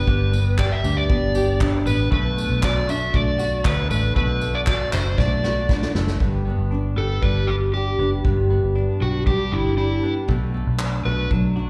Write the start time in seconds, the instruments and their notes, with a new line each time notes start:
Already playing: nylon-string guitar B3 D4 G4, clean electric guitar D4, electric slide guitar B4
0.07 fingered electric bass G1, nylon-string guitar G2, clean electric guitar B3 G4, kick
0.32 nylon-string guitar B3, clean electric guitar B3, tambourine
0.58 clean electric guitar D4, nylon-string guitar G4, electric slide guitar D5, kick, clap
0.72 electric slide guitar E5
0.84 fingered electric bass D2, nylon-string guitar D4, clean electric guitar G4, tambourine
0.97 electric slide guitar D5
1.09 fingered electric bass G1, nylon-string guitar B3, clean electric guitar D4, kick
1.35 nylon-string guitar G4, clean electric guitar G4, tambourine
1.60 nylon-string guitar D4, clean electric guitar D4, kick, clap
1.86 fingered electric bass A1, clean electric guitar B3, nylon-string guitar B3, electric slide guitar B4, tambourine
2.11 fingered electric bass B1, nylon-string guitar B2, clean electric guitar A3 F#4, electric slide guitar B4, kick
2.36 clean electric guitar A3, nylon-string guitar A3, tambourine
2.50 fingered electric bass B1
2.62 clean electric guitar D4, nylon-string guitar F#4, electric slide guitar D5, kick, clap
2.87 nylon-string guitar D4, clean electric guitar F#4, electric slide guitar E5, tambourine
3.13 fingered electric bass B1, nylon-string guitar A3, clean electric guitar D4, electric slide guitar D5, kick
3.39 clean electric guitar F#4, nylon-string guitar F#4, tambourine
3.64 fingered electric bass D2, clean electric guitar D4, nylon-string guitar D4, electric slide guitar B4, kick, clap
3.90 fingered electric bass A1, clean electric guitar A3, nylon-string guitar A3, electric slide guitar B4, tambourine
4.15 fingered electric bass B1, nylon-string guitar B2, clean electric guitar A3 F#4, electric slide guitar B4, kick
4.41 nylon-string guitar A3, clean electric guitar A3, tambourine
4.55 electric slide guitar D5
4.66 clean electric guitar D4, nylon-string guitar F#4, electric slide guitar D5, kick, clap
4.92 fingered electric bass F#1, nylon-string guitar D4, clean electric guitar E4, electric slide guitar C5, clap, tambourine
5.06 clean electric guitar F#4
5.18 fingered electric bass B1, nylon-string guitar A3, clean electric guitar D4, electric slide guitar D5, kick, snare
5.43 nylon-string guitar F#4, clean electric guitar F#4, snare
5.69 clean electric guitar D4, nylon-string guitar D4, kick, snare
5.82 snare
5.95 fingered electric bass F#1, clean electric guitar A3, nylon-string guitar A3, snare
6.07 snare
6.20 fingered electric bass G1, nylon-string guitar G2, clean electric guitar B3, kick
6.45 clean electric guitar B3, nylon-string guitar B3
6.58 fingered electric bass G1
6.71 clean electric guitar D4, nylon-string guitar D4
6.96 fingered electric bass G1, clean electric guitar B3, nylon-string guitar G4, electric slide guitar A4
7.22 fingered electric bass G1, nylon-string guitar G3, clean electric guitar D4, electric slide guitar B4, kick
7.47 nylon-string guitar D4, electric slide guitar G4, clean electric guitar G4
7.73 clean electric guitar D4, electric slide guitar G4, nylon-string guitar G4
7.99 fingered electric bass F#1, clean electric guitar B3, nylon-string guitar D4
8.24 fingered electric bass G1, nylon-string guitar G2, clean electric guitar B3, kick
8.50 nylon-string guitar B3, clean electric guitar B3
8.63 fingered electric bass G1
8.76 clean electric guitar D4, nylon-string guitar D4
9.00 fingered electric bass B1, clean electric guitar B3, electric slide guitar F#4, nylon-string guitar G4
9.26 nylon-string guitar G3, clean electric guitar D4, electric slide guitar G4, kick
9.52 fingered electric bass G1, nylon-string guitar D4, electric slide guitar E4, clean electric guitar G4
9.77 clean electric guitar D4, electric slide guitar E4, nylon-string guitar G4
10.02 clean electric guitar B3, nylon-string guitar D4
10.28 fingered electric bass B1, nylon-string guitar B2, clean electric guitar A3, kick
10.54 nylon-string guitar A3, clean electric guitar A3
10.67 fingered electric bass B1
10.79 nylon-string guitar D4, clean electric guitar D4, clap
11.05 fingered electric bass B1, clean electric guitar A3, nylon-string guitar F#4, electric slide guitar B4
11.31 fingered electric bass B1, nylon-string guitar F#3, clean electric guitar D4, kick
11.56 nylon-string guitar D4, clean electric guitar F#4